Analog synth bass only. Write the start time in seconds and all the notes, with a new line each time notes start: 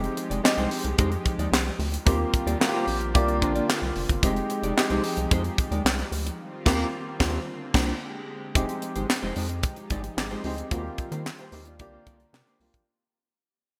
0.30 F1
0.57 C2
0.84 C2
0.98 F2
1.38 D#2
1.52 C2
1.79 D2
2.07 D#2
2.46 D#2
2.87 A#1
3.15 C2
3.42 A#1
3.82 C2
3.96 F1
4.09 G1
4.23 F1
4.63 F1
4.90 C2
5.17 C2
5.31 F2
5.71 D#2
5.85 C2
6.12 D2
6.66 D#2
7.20 D#2
7.74 C2
8.55 F1
8.96 G#1
9.23 F1
9.36 F2
9.90 G#1
10.17 G#1
10.44 D2
10.71 D#2
11.12 D#3
11.52 D#2
11.80 C2
12.06 C2
12.33 C3
12.60 C2
12.74 A#1